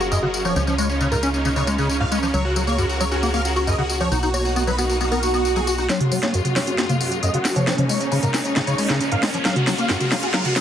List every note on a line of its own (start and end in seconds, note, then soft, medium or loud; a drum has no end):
0.00 0.54 F#1 medium
0.00 0.54 F#3 medium
0.00 0.54 C#4 medium
0.00 4.08 F4 medium
0.00 0.09 F#4 medium
0.00 0.07 F#4 medium
0.00 0.54 G#4 medium
0.00 0.54 A#4 medium
0.00 tambourine soft
0.11 0.18 F#2 medium
0.11 0.20 D#5 medium
0.11 tambourine soft
0.23 0.27 C#3 medium
0.23 0.31 F#4 medium
0.34 0.42 F#4 medium
0.34 tambourine medium
0.45 0.55 F3 medium
0.45 0.53 C#5 medium
0.45 tambourine soft
0.56 2.32 C#2 medium
0.56 4.08 C#3 medium
0.56 0.63 F3 medium
0.56 2.32 G#3 medium
0.56 2.32 A#3 medium
0.56 0.64 C#4 medium
0.56 2.32 D#4 medium
0.56 tambourine soft
0.67 0.74 F3 medium
0.67 0.75 C#4 medium
0.67 tambourine soft
0.78 0.88 G#3 medium
0.78 0.87 C#5 medium
0.78 tambourine medium
0.89 0.98 C#4 medium
0.89 tambourine soft
1.00 1.07 C#3 medium
1.00 1.09 C#4 medium
1.00 tambourine soft
1.12 1.16 G#2 medium
1.12 1.20 A#4 medium
1.12 tambourine soft
1.23 1.31 C#4 medium
1.23 1.30 C#4 medium
1.23 tambourine medium
1.34 1.42 C#4 medium
1.34 tambourine soft
1.45 1.49 C#3 medium
1.45 1.53 C#4 medium
1.45 tambourine soft
1.56 1.63 C#3 medium
1.56 1.64 C#5 medium
1.56 tambourine soft
1.67 1.77 G#3 medium
1.67 1.75 C#4 medium
1.67 tambourine medium
1.78 1.88 C#3 medium
1.78 1.86 C#4 medium
1.78 tambourine soft
1.89 1.97 C#4 medium
1.89 tambourine soft
2.00 2.05 G#2 medium
2.00 2.09 F5 medium
2.12 2.18 G#3 loud
2.12 2.20 C#4 medium
2.12 tambourine medium
2.23 2.27 F3 medium
2.23 2.31 C#4 medium
2.23 tambourine soft
2.34 4.09 C#2 medium
2.34 2.44 F#3 medium
2.34 4.10 C#4 medium
2.34 4.10 G#4 medium
2.34 4.10 A#4 medium
2.34 2.42 C#5 loud
2.34 tambourine soft
2.45 2.53 F#4 medium
2.56 2.63 F#3 medium
2.56 2.64 F#4 medium
2.56 tambourine medium
2.67 2.77 A#3 medium
2.67 2.75 C#5 medium
2.67 tambourine soft
2.78 2.85 F#2 medium
2.78 2.86 F#4 medium
2.78 tambourine soft
2.89 2.98 F#4 medium
2.89 tambourine soft
3.00 3.05 F#3 loud
3.00 3.09 C#5 medium
3.00 tambourine medium
3.11 3.16 C#4 medium
3.11 3.20 F#4 medium
3.11 tambourine soft
3.23 3.29 A#3 medium
3.23 3.31 F#4 medium
3.23 tambourine soft
3.34 3.41 A#3 medium
3.34 3.42 F5 medium
3.34 tambourine soft
3.45 3.53 F#4 medium
3.45 tambourine medium
3.56 3.63 F#4 medium
3.56 3.64 F#4 medium
3.56 tambourine soft
3.67 3.74 F#2 medium
3.67 3.75 D#5 medium
3.67 tambourine soft
3.78 3.82 C#3 medium
3.78 3.87 F#4 medium
3.89 3.98 F#4 medium
3.89 tambourine medium
4.00 4.11 F3 medium
4.00 4.09 C#5 medium
4.00 tambourine soft
4.12 5.87 B1 medium
4.12 5.88 A#3 medium
4.12 5.88 B3 medium
4.12 4.18 D#4 medium
4.12 5.88 D#4 medium
4.12 4.20 F#4 medium
4.12 tambourine soft
4.23 4.30 D#4 medium
4.23 4.31 F#4 medium
4.23 tambourine soft
4.34 4.44 F#4 medium
4.34 4.42 C#5 medium
4.34 tambourine medium
4.45 4.53 F#4 medium
4.45 tambourine soft
4.56 4.63 B3 medium
4.56 4.64 F#4 medium
4.56 tambourine soft
4.67 4.71 F#3 medium
4.67 4.75 B4 medium
4.67 tambourine soft
4.78 4.85 B3 medium
4.78 4.86 F#4 medium
4.78 tambourine medium
4.89 4.98 F#4 medium
4.89 tambourine soft
5.00 5.05 B3 medium
5.00 5.09 F#4 medium
5.00 tambourine soft
5.00 swell medium
5.11 5.18 B3 medium
5.11 5.20 A#4 medium
5.11 tambourine soft
5.23 5.31 F#4 medium
5.23 5.33 F#4 medium
5.23 tambourine medium
5.34 5.44 B3 medium
5.34 5.42 F#4 medium
5.34 tambourine soft
5.45 5.53 F#4 medium
5.45 tambourine soft
5.56 5.60 F#3 medium
5.56 5.64 G#4 medium
5.56 tambourine soft
5.67 5.75 F#4 medium
5.67 5.74 F#4 loud
5.67 tambourine medium
5.78 5.82 D#4 medium
5.78 5.86 F#4 medium
5.78 tambourine soft
5.89 7.65 F#2 medium
5.89 10.61 C#3 medium
5.89 6.00 F#3 medium
5.89 7.65 G#3 medium
5.89 10.61 A#3 medium
5.89 7.65 F4 medium
5.89 5.97 C#5 loud
5.89 snare soft
5.89 closed hi-hat medium
5.89 tambourine soft
5.89 riser medium
6.00 6.09 F#4 medium
6.00 closed hi-hat medium
6.00 mid tom medium
6.11 6.18 F#3 medium
6.11 6.20 F#4 medium
6.11 open hi-hat loud
6.11 tambourine medium
6.23 6.33 A#3 medium
6.23 6.31 C#5 medium
6.23 snare soft
6.23 closed hi-hat medium
6.23 tambourine soft
6.34 6.41 F#2 medium
6.34 6.42 F#4 medium
6.34 closed hi-hat medium
6.34 tambourine soft
6.45 6.53 F#4 medium
6.45 closed hi-hat medium
6.45 mid tom medium
6.45 tambourine soft
6.56 6.60 F#3 medium
6.56 6.64 C#5 medium
6.56 snare soft
6.56 open hi-hat loud
6.56 tambourine medium
6.67 6.71 C#4 medium
6.67 6.75 F#4 medium
6.67 closed hi-hat medium
6.67 tambourine soft
6.78 6.85 A#3 medium
6.78 6.86 F#4 medium
6.78 snare soft
6.78 closed hi-hat medium
6.78 tambourine soft
6.89 6.96 A#3 medium
6.89 6.97 F5 medium
6.89 closed hi-hat medium
6.89 mid tom medium
6.89 tambourine soft
7.00 7.09 F#4 medium
7.00 open hi-hat loud
7.00 tambourine medium
7.11 7.18 F#4 medium
7.11 7.20 F#4 medium
7.11 closed hi-hat medium
7.11 tambourine soft
7.23 7.29 F#2 medium
7.23 7.31 D#5 medium
7.23 closed hi-hat medium
7.23 tambourine soft
7.34 7.38 C#3 medium
7.34 7.42 F#4 medium
7.34 closed hi-hat medium
7.45 7.53 F#4 medium
7.45 snare medium
7.45 open hi-hat loud
7.45 tambourine medium
7.56 7.66 F3 medium
7.56 7.64 C#5 loud
7.56 closed hi-hat medium
7.56 mid tom medium
7.56 tambourine soft
7.67 10.61 C#2 medium
7.67 7.74 F3 medium
7.67 9.43 F3 medium
7.67 7.75 C#4 medium
7.67 9.43 D#4 medium
7.67 snare medium
7.67 closed hi-hat medium
7.67 tambourine soft
7.78 7.85 F3 medium
7.78 7.86 C#4 medium
7.78 closed hi-hat medium
7.78 mid tom medium
7.89 7.99 G#3 medium
7.89 7.98 C#5 medium
7.89 open hi-hat loud
7.89 tambourine medium
8.01 8.09 C#4 medium
8.01 closed hi-hat medium
8.01 tambourine soft
8.12 8.18 C#3 medium
8.12 8.20 C#4 medium
8.12 open hi-hat medium
8.12 tambourine soft
8.23 8.27 G#2 medium
8.23 8.31 A#4 loud
8.23 closed hi-hat medium
8.23 mid tom medium
8.23 tambourine soft
8.34 8.41 C#4 medium
8.34 8.42 C#4 medium
8.34 snare medium
8.34 open hi-hat loud
8.34 tambourine medium
8.45 8.53 C#4 medium
8.45 closed hi-hat medium
8.45 tambourine soft
8.56 8.60 C#3 medium
8.56 8.64 C#4 medium
8.56 snare medium
8.56 closed hi-hat medium
8.56 tambourine soft
8.67 8.74 C#3 medium
8.67 8.75 C#5 medium
8.67 closed hi-hat medium
8.67 tambourine soft
8.78 8.88 G#3 medium
8.78 8.86 C#4 medium
8.78 open hi-hat loud
8.78 tambourine medium
8.89 8.99 C#3 medium
8.89 8.98 C#4 medium
8.89 snare medium
8.89 closed hi-hat medium
8.89 tambourine soft
9.00 9.09 C#4 medium
9.00 closed hi-hat medium
9.00 tambourine soft
9.12 9.16 G#2 medium
9.12 9.20 F5 loud
9.12 closed hi-hat medium
9.23 9.29 G#3 loud
9.23 9.31 C#4 medium
9.23 snare medium
9.23 open hi-hat loud
9.23 tambourine medium
9.34 9.38 F3 medium
9.34 9.42 C#4 medium
9.34 closed hi-hat medium
9.34 tambourine soft
9.45 9.55 F#3 medium
9.45 10.61 G#3 medium
9.45 10.61 F4 medium
9.45 9.53 F5 medium
9.45 snare medium
9.45 closed hi-hat medium
9.45 tambourine soft
9.56 9.64 F#4 medium
9.56 closed hi-hat medium
9.56 mid tom medium
9.67 9.74 F#3 medium
9.67 9.75 F#4 medium
9.67 snare medium
9.67 open hi-hat loud
9.67 tambourine medium
9.78 9.88 A#3 medium
9.78 9.87 F5 medium
9.78 closed hi-hat medium
9.78 tambourine soft
9.89 9.96 F#2 medium
9.89 9.98 F#4 medium
9.89 snare medium
9.89 closed hi-hat medium
9.89 tambourine soft
10.01 10.09 F#4 medium
10.01 closed hi-hat medium
10.01 mid tom medium
10.01 tambourine soft
10.12 10.16 F#3 medium
10.12 10.20 F5 medium
10.12 snare medium
10.12 open hi-hat loud
10.12 tambourine medium
10.23 10.27 C#4 medium
10.23 10.31 F#4 medium
10.23 closed hi-hat medium
10.23 tambourine soft
10.34 10.44 F#3 medium
10.34 10.42 F5 loud
10.34 snare medium
10.34 closed hi-hat medium
10.34 tambourine soft
10.45 10.53 F#4 medium
10.45 closed hi-hat medium
10.45 mid tom medium
10.45 tambourine soft
10.56 10.61 F#3 medium
10.56 10.61 F#4 medium
10.56 snare medium
10.56 open hi-hat loud
10.56 tambourine medium